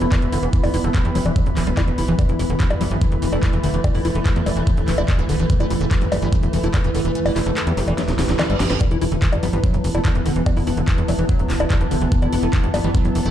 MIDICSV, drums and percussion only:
0, 0, Header, 1, 2, 480
1, 0, Start_track
1, 0, Tempo, 413793
1, 617, Time_signature, 4, 2, 24, 8
1, 15436, End_track
2, 0, Start_track
2, 0, Title_t, "Drums"
2, 17, Note_on_c, 9, 42, 51
2, 133, Note_off_c, 9, 42, 0
2, 137, Note_on_c, 9, 36, 121
2, 137, Note_on_c, 9, 39, 120
2, 137, Note_on_c, 9, 42, 76
2, 137, Note_on_c, 9, 60, 37
2, 253, Note_off_c, 9, 36, 0
2, 253, Note_off_c, 9, 39, 0
2, 253, Note_off_c, 9, 42, 0
2, 253, Note_off_c, 9, 60, 0
2, 257, Note_on_c, 9, 42, 51
2, 373, Note_off_c, 9, 42, 0
2, 377, Note_on_c, 9, 46, 115
2, 493, Note_off_c, 9, 46, 0
2, 497, Note_on_c, 9, 42, 52
2, 613, Note_off_c, 9, 42, 0
2, 617, Note_on_c, 9, 36, 120
2, 617, Note_on_c, 9, 42, 76
2, 733, Note_off_c, 9, 36, 0
2, 733, Note_off_c, 9, 42, 0
2, 737, Note_on_c, 9, 46, 63
2, 737, Note_on_c, 9, 60, 81
2, 853, Note_off_c, 9, 46, 0
2, 853, Note_off_c, 9, 60, 0
2, 857, Note_on_c, 9, 46, 111
2, 973, Note_off_c, 9, 46, 0
2, 977, Note_on_c, 9, 42, 50
2, 1093, Note_off_c, 9, 42, 0
2, 1097, Note_on_c, 9, 36, 126
2, 1097, Note_on_c, 9, 39, 117
2, 1097, Note_on_c, 9, 42, 77
2, 1213, Note_off_c, 9, 36, 0
2, 1213, Note_off_c, 9, 39, 0
2, 1213, Note_off_c, 9, 42, 0
2, 1217, Note_on_c, 9, 42, 52
2, 1333, Note_off_c, 9, 42, 0
2, 1337, Note_on_c, 9, 46, 110
2, 1453, Note_off_c, 9, 46, 0
2, 1457, Note_on_c, 9, 42, 52
2, 1457, Note_on_c, 9, 60, 39
2, 1573, Note_off_c, 9, 42, 0
2, 1573, Note_off_c, 9, 60, 0
2, 1577, Note_on_c, 9, 36, 125
2, 1577, Note_on_c, 9, 42, 76
2, 1693, Note_off_c, 9, 36, 0
2, 1693, Note_off_c, 9, 42, 0
2, 1697, Note_on_c, 9, 42, 52
2, 1813, Note_off_c, 9, 42, 0
2, 1817, Note_on_c, 9, 39, 62
2, 1817, Note_on_c, 9, 46, 114
2, 1933, Note_off_c, 9, 39, 0
2, 1933, Note_off_c, 9, 46, 0
2, 1937, Note_on_c, 9, 42, 51
2, 2053, Note_off_c, 9, 42, 0
2, 2057, Note_on_c, 9, 36, 117
2, 2057, Note_on_c, 9, 39, 115
2, 2057, Note_on_c, 9, 42, 76
2, 2057, Note_on_c, 9, 60, 79
2, 2173, Note_off_c, 9, 36, 0
2, 2173, Note_off_c, 9, 39, 0
2, 2173, Note_off_c, 9, 42, 0
2, 2173, Note_off_c, 9, 60, 0
2, 2177, Note_on_c, 9, 42, 52
2, 2293, Note_off_c, 9, 42, 0
2, 2297, Note_on_c, 9, 46, 116
2, 2413, Note_off_c, 9, 46, 0
2, 2417, Note_on_c, 9, 42, 51
2, 2533, Note_off_c, 9, 42, 0
2, 2537, Note_on_c, 9, 36, 120
2, 2537, Note_on_c, 9, 42, 77
2, 2537, Note_on_c, 9, 60, 41
2, 2653, Note_off_c, 9, 36, 0
2, 2653, Note_off_c, 9, 42, 0
2, 2653, Note_off_c, 9, 60, 0
2, 2657, Note_on_c, 9, 42, 51
2, 2773, Note_off_c, 9, 42, 0
2, 2777, Note_on_c, 9, 46, 109
2, 2893, Note_off_c, 9, 46, 0
2, 2897, Note_on_c, 9, 42, 50
2, 3013, Note_off_c, 9, 42, 0
2, 3017, Note_on_c, 9, 36, 124
2, 3017, Note_on_c, 9, 39, 116
2, 3017, Note_on_c, 9, 42, 80
2, 3133, Note_off_c, 9, 36, 0
2, 3133, Note_off_c, 9, 39, 0
2, 3133, Note_off_c, 9, 42, 0
2, 3137, Note_on_c, 9, 42, 53
2, 3137, Note_on_c, 9, 60, 85
2, 3253, Note_off_c, 9, 42, 0
2, 3253, Note_off_c, 9, 60, 0
2, 3257, Note_on_c, 9, 46, 106
2, 3373, Note_off_c, 9, 46, 0
2, 3377, Note_on_c, 9, 42, 49
2, 3493, Note_off_c, 9, 42, 0
2, 3497, Note_on_c, 9, 36, 120
2, 3497, Note_on_c, 9, 42, 80
2, 3613, Note_off_c, 9, 36, 0
2, 3613, Note_off_c, 9, 42, 0
2, 3617, Note_on_c, 9, 42, 51
2, 3733, Note_off_c, 9, 42, 0
2, 3737, Note_on_c, 9, 46, 109
2, 3853, Note_off_c, 9, 46, 0
2, 3857, Note_on_c, 9, 42, 51
2, 3857, Note_on_c, 9, 60, 41
2, 3973, Note_off_c, 9, 42, 0
2, 3973, Note_off_c, 9, 60, 0
2, 3977, Note_on_c, 9, 36, 114
2, 3977, Note_on_c, 9, 39, 114
2, 3977, Note_on_c, 9, 42, 77
2, 4093, Note_off_c, 9, 36, 0
2, 4093, Note_off_c, 9, 39, 0
2, 4093, Note_off_c, 9, 42, 0
2, 4097, Note_on_c, 9, 42, 50
2, 4213, Note_off_c, 9, 42, 0
2, 4217, Note_on_c, 9, 46, 114
2, 4333, Note_off_c, 9, 46, 0
2, 4337, Note_on_c, 9, 42, 53
2, 4453, Note_off_c, 9, 42, 0
2, 4457, Note_on_c, 9, 36, 111
2, 4457, Note_on_c, 9, 42, 80
2, 4457, Note_on_c, 9, 60, 82
2, 4573, Note_off_c, 9, 36, 0
2, 4573, Note_off_c, 9, 42, 0
2, 4573, Note_off_c, 9, 60, 0
2, 4577, Note_on_c, 9, 46, 58
2, 4693, Note_off_c, 9, 46, 0
2, 4697, Note_on_c, 9, 46, 99
2, 4813, Note_off_c, 9, 46, 0
2, 4817, Note_on_c, 9, 42, 54
2, 4933, Note_off_c, 9, 42, 0
2, 4937, Note_on_c, 9, 39, 117
2, 4937, Note_on_c, 9, 42, 82
2, 4938, Note_on_c, 9, 36, 120
2, 5053, Note_off_c, 9, 39, 0
2, 5053, Note_off_c, 9, 42, 0
2, 5054, Note_off_c, 9, 36, 0
2, 5057, Note_on_c, 9, 42, 53
2, 5173, Note_off_c, 9, 42, 0
2, 5177, Note_on_c, 9, 46, 103
2, 5177, Note_on_c, 9, 60, 43
2, 5293, Note_off_c, 9, 46, 0
2, 5293, Note_off_c, 9, 60, 0
2, 5297, Note_on_c, 9, 42, 52
2, 5413, Note_off_c, 9, 42, 0
2, 5417, Note_on_c, 9, 42, 82
2, 5418, Note_on_c, 9, 36, 119
2, 5533, Note_off_c, 9, 42, 0
2, 5534, Note_off_c, 9, 36, 0
2, 5537, Note_on_c, 9, 42, 53
2, 5653, Note_off_c, 9, 42, 0
2, 5657, Note_on_c, 9, 39, 61
2, 5657, Note_on_c, 9, 46, 109
2, 5773, Note_off_c, 9, 39, 0
2, 5773, Note_off_c, 9, 46, 0
2, 5777, Note_on_c, 9, 60, 83
2, 5893, Note_off_c, 9, 60, 0
2, 5897, Note_on_c, 9, 39, 110
2, 5897, Note_on_c, 9, 42, 77
2, 5898, Note_on_c, 9, 36, 112
2, 6013, Note_off_c, 9, 39, 0
2, 6013, Note_off_c, 9, 42, 0
2, 6014, Note_off_c, 9, 36, 0
2, 6017, Note_on_c, 9, 42, 53
2, 6133, Note_off_c, 9, 42, 0
2, 6137, Note_on_c, 9, 46, 105
2, 6253, Note_off_c, 9, 46, 0
2, 6257, Note_on_c, 9, 42, 55
2, 6373, Note_off_c, 9, 42, 0
2, 6377, Note_on_c, 9, 42, 80
2, 6378, Note_on_c, 9, 36, 117
2, 6493, Note_off_c, 9, 42, 0
2, 6494, Note_off_c, 9, 36, 0
2, 6498, Note_on_c, 9, 42, 53
2, 6498, Note_on_c, 9, 60, 41
2, 6614, Note_off_c, 9, 42, 0
2, 6614, Note_off_c, 9, 60, 0
2, 6617, Note_on_c, 9, 46, 102
2, 6733, Note_off_c, 9, 46, 0
2, 6737, Note_on_c, 9, 42, 56
2, 6853, Note_off_c, 9, 42, 0
2, 6857, Note_on_c, 9, 39, 118
2, 6857, Note_on_c, 9, 42, 85
2, 6858, Note_on_c, 9, 36, 121
2, 6973, Note_off_c, 9, 39, 0
2, 6973, Note_off_c, 9, 42, 0
2, 6974, Note_off_c, 9, 36, 0
2, 6977, Note_on_c, 9, 42, 55
2, 7093, Note_off_c, 9, 42, 0
2, 7097, Note_on_c, 9, 46, 104
2, 7097, Note_on_c, 9, 60, 84
2, 7213, Note_off_c, 9, 46, 0
2, 7213, Note_off_c, 9, 60, 0
2, 7217, Note_on_c, 9, 42, 54
2, 7333, Note_off_c, 9, 42, 0
2, 7337, Note_on_c, 9, 42, 82
2, 7338, Note_on_c, 9, 36, 115
2, 7453, Note_off_c, 9, 42, 0
2, 7454, Note_off_c, 9, 36, 0
2, 7457, Note_on_c, 9, 42, 56
2, 7573, Note_off_c, 9, 42, 0
2, 7577, Note_on_c, 9, 46, 103
2, 7693, Note_off_c, 9, 46, 0
2, 7697, Note_on_c, 9, 42, 54
2, 7813, Note_off_c, 9, 42, 0
2, 7817, Note_on_c, 9, 36, 112
2, 7817, Note_on_c, 9, 39, 119
2, 7817, Note_on_c, 9, 42, 83
2, 7817, Note_on_c, 9, 60, 40
2, 7933, Note_off_c, 9, 36, 0
2, 7933, Note_off_c, 9, 39, 0
2, 7933, Note_off_c, 9, 42, 0
2, 7933, Note_off_c, 9, 60, 0
2, 7937, Note_on_c, 9, 42, 54
2, 8053, Note_off_c, 9, 42, 0
2, 8057, Note_on_c, 9, 46, 104
2, 8173, Note_off_c, 9, 46, 0
2, 8177, Note_on_c, 9, 42, 57
2, 8293, Note_off_c, 9, 42, 0
2, 8297, Note_on_c, 9, 42, 84
2, 8413, Note_off_c, 9, 42, 0
2, 8417, Note_on_c, 9, 46, 61
2, 8417, Note_on_c, 9, 60, 77
2, 8533, Note_off_c, 9, 46, 0
2, 8533, Note_off_c, 9, 60, 0
2, 8537, Note_on_c, 9, 39, 62
2, 8537, Note_on_c, 9, 46, 104
2, 8653, Note_off_c, 9, 39, 0
2, 8653, Note_off_c, 9, 46, 0
2, 8777, Note_on_c, 9, 39, 125
2, 8777, Note_on_c, 9, 42, 84
2, 8893, Note_off_c, 9, 39, 0
2, 8893, Note_off_c, 9, 42, 0
2, 8897, Note_on_c, 9, 42, 59
2, 9013, Note_off_c, 9, 42, 0
2, 9017, Note_on_c, 9, 46, 101
2, 9133, Note_off_c, 9, 46, 0
2, 9137, Note_on_c, 9, 42, 54
2, 9137, Note_on_c, 9, 60, 39
2, 9253, Note_off_c, 9, 42, 0
2, 9253, Note_off_c, 9, 60, 0
2, 9257, Note_on_c, 9, 38, 62
2, 9257, Note_on_c, 9, 42, 83
2, 9373, Note_off_c, 9, 38, 0
2, 9373, Note_off_c, 9, 42, 0
2, 9377, Note_on_c, 9, 38, 59
2, 9377, Note_on_c, 9, 42, 58
2, 9493, Note_off_c, 9, 38, 0
2, 9493, Note_off_c, 9, 42, 0
2, 9497, Note_on_c, 9, 38, 78
2, 9497, Note_on_c, 9, 46, 103
2, 9613, Note_off_c, 9, 38, 0
2, 9613, Note_off_c, 9, 46, 0
2, 9617, Note_on_c, 9, 38, 70
2, 9617, Note_on_c, 9, 42, 55
2, 9733, Note_off_c, 9, 38, 0
2, 9733, Note_off_c, 9, 42, 0
2, 9737, Note_on_c, 9, 38, 86
2, 9737, Note_on_c, 9, 39, 118
2, 9737, Note_on_c, 9, 42, 82
2, 9737, Note_on_c, 9, 60, 76
2, 9853, Note_off_c, 9, 38, 0
2, 9853, Note_off_c, 9, 39, 0
2, 9853, Note_off_c, 9, 42, 0
2, 9853, Note_off_c, 9, 60, 0
2, 9857, Note_on_c, 9, 42, 55
2, 9973, Note_off_c, 9, 42, 0
2, 9977, Note_on_c, 9, 38, 103
2, 9977, Note_on_c, 9, 46, 104
2, 10093, Note_off_c, 9, 38, 0
2, 10093, Note_off_c, 9, 46, 0
2, 10097, Note_on_c, 9, 38, 90
2, 10097, Note_on_c, 9, 42, 57
2, 10213, Note_off_c, 9, 38, 0
2, 10213, Note_off_c, 9, 42, 0
2, 10217, Note_on_c, 9, 42, 84
2, 10217, Note_on_c, 9, 60, 37
2, 10218, Note_on_c, 9, 36, 121
2, 10333, Note_off_c, 9, 42, 0
2, 10333, Note_off_c, 9, 60, 0
2, 10334, Note_off_c, 9, 36, 0
2, 10337, Note_on_c, 9, 42, 56
2, 10453, Note_off_c, 9, 42, 0
2, 10457, Note_on_c, 9, 46, 107
2, 10573, Note_off_c, 9, 46, 0
2, 10577, Note_on_c, 9, 42, 54
2, 10693, Note_off_c, 9, 42, 0
2, 10697, Note_on_c, 9, 39, 127
2, 10697, Note_on_c, 9, 42, 83
2, 10698, Note_on_c, 9, 36, 121
2, 10813, Note_off_c, 9, 39, 0
2, 10813, Note_off_c, 9, 42, 0
2, 10814, Note_off_c, 9, 36, 0
2, 10817, Note_on_c, 9, 42, 57
2, 10817, Note_on_c, 9, 60, 77
2, 10933, Note_off_c, 9, 42, 0
2, 10933, Note_off_c, 9, 60, 0
2, 10937, Note_on_c, 9, 46, 110
2, 11053, Note_off_c, 9, 46, 0
2, 11057, Note_on_c, 9, 42, 57
2, 11173, Note_off_c, 9, 42, 0
2, 11177, Note_on_c, 9, 42, 83
2, 11178, Note_on_c, 9, 36, 122
2, 11293, Note_off_c, 9, 42, 0
2, 11294, Note_off_c, 9, 36, 0
2, 11297, Note_on_c, 9, 42, 57
2, 11413, Note_off_c, 9, 42, 0
2, 11417, Note_on_c, 9, 46, 109
2, 11533, Note_off_c, 9, 46, 0
2, 11537, Note_on_c, 9, 42, 57
2, 11537, Note_on_c, 9, 60, 39
2, 11653, Note_off_c, 9, 42, 0
2, 11653, Note_off_c, 9, 60, 0
2, 11657, Note_on_c, 9, 39, 124
2, 11657, Note_on_c, 9, 42, 82
2, 11658, Note_on_c, 9, 36, 120
2, 11773, Note_off_c, 9, 39, 0
2, 11773, Note_off_c, 9, 42, 0
2, 11774, Note_off_c, 9, 36, 0
2, 11777, Note_on_c, 9, 42, 55
2, 11893, Note_off_c, 9, 42, 0
2, 11897, Note_on_c, 9, 46, 111
2, 12013, Note_off_c, 9, 46, 0
2, 12017, Note_on_c, 9, 42, 55
2, 12133, Note_off_c, 9, 42, 0
2, 12137, Note_on_c, 9, 42, 83
2, 12137, Note_on_c, 9, 60, 75
2, 12138, Note_on_c, 9, 36, 122
2, 12253, Note_off_c, 9, 42, 0
2, 12253, Note_off_c, 9, 60, 0
2, 12254, Note_off_c, 9, 36, 0
2, 12257, Note_on_c, 9, 46, 64
2, 12373, Note_off_c, 9, 46, 0
2, 12377, Note_on_c, 9, 46, 108
2, 12493, Note_off_c, 9, 46, 0
2, 12497, Note_on_c, 9, 42, 54
2, 12613, Note_off_c, 9, 42, 0
2, 12617, Note_on_c, 9, 39, 127
2, 12617, Note_on_c, 9, 42, 84
2, 12618, Note_on_c, 9, 36, 127
2, 12733, Note_off_c, 9, 39, 0
2, 12733, Note_off_c, 9, 42, 0
2, 12734, Note_off_c, 9, 36, 0
2, 12737, Note_on_c, 9, 42, 55
2, 12853, Note_off_c, 9, 42, 0
2, 12857, Note_on_c, 9, 46, 109
2, 12857, Note_on_c, 9, 60, 40
2, 12973, Note_off_c, 9, 46, 0
2, 12973, Note_off_c, 9, 60, 0
2, 12977, Note_on_c, 9, 42, 55
2, 13093, Note_off_c, 9, 42, 0
2, 13097, Note_on_c, 9, 42, 83
2, 13098, Note_on_c, 9, 36, 124
2, 13213, Note_off_c, 9, 42, 0
2, 13214, Note_off_c, 9, 36, 0
2, 13217, Note_on_c, 9, 42, 53
2, 13333, Note_off_c, 9, 42, 0
2, 13337, Note_on_c, 9, 39, 67
2, 13337, Note_on_c, 9, 46, 112
2, 13453, Note_off_c, 9, 39, 0
2, 13453, Note_off_c, 9, 46, 0
2, 13457, Note_on_c, 9, 42, 55
2, 13457, Note_on_c, 9, 60, 76
2, 13573, Note_off_c, 9, 42, 0
2, 13573, Note_off_c, 9, 60, 0
2, 13577, Note_on_c, 9, 36, 124
2, 13577, Note_on_c, 9, 39, 125
2, 13577, Note_on_c, 9, 42, 82
2, 13693, Note_off_c, 9, 36, 0
2, 13693, Note_off_c, 9, 39, 0
2, 13693, Note_off_c, 9, 42, 0
2, 13698, Note_on_c, 9, 42, 55
2, 13814, Note_off_c, 9, 42, 0
2, 13817, Note_on_c, 9, 46, 111
2, 13933, Note_off_c, 9, 46, 0
2, 13937, Note_on_c, 9, 42, 53
2, 14053, Note_off_c, 9, 42, 0
2, 14057, Note_on_c, 9, 36, 124
2, 14057, Note_on_c, 9, 42, 79
2, 14173, Note_off_c, 9, 36, 0
2, 14173, Note_off_c, 9, 42, 0
2, 14177, Note_on_c, 9, 42, 52
2, 14177, Note_on_c, 9, 60, 39
2, 14293, Note_off_c, 9, 42, 0
2, 14293, Note_off_c, 9, 60, 0
2, 14297, Note_on_c, 9, 46, 110
2, 14413, Note_off_c, 9, 46, 0
2, 14417, Note_on_c, 9, 42, 51
2, 14533, Note_off_c, 9, 42, 0
2, 14537, Note_on_c, 9, 36, 127
2, 14537, Note_on_c, 9, 39, 126
2, 14537, Note_on_c, 9, 42, 82
2, 14653, Note_off_c, 9, 36, 0
2, 14653, Note_off_c, 9, 39, 0
2, 14653, Note_off_c, 9, 42, 0
2, 14657, Note_on_c, 9, 42, 53
2, 14773, Note_off_c, 9, 42, 0
2, 14777, Note_on_c, 9, 46, 112
2, 14777, Note_on_c, 9, 60, 82
2, 14893, Note_off_c, 9, 46, 0
2, 14893, Note_off_c, 9, 60, 0
2, 14897, Note_on_c, 9, 42, 52
2, 15013, Note_off_c, 9, 42, 0
2, 15017, Note_on_c, 9, 36, 127
2, 15017, Note_on_c, 9, 42, 79
2, 15133, Note_off_c, 9, 36, 0
2, 15133, Note_off_c, 9, 42, 0
2, 15137, Note_on_c, 9, 42, 55
2, 15253, Note_off_c, 9, 42, 0
2, 15257, Note_on_c, 9, 46, 116
2, 15373, Note_off_c, 9, 46, 0
2, 15377, Note_on_c, 9, 42, 51
2, 15436, Note_off_c, 9, 42, 0
2, 15436, End_track
0, 0, End_of_file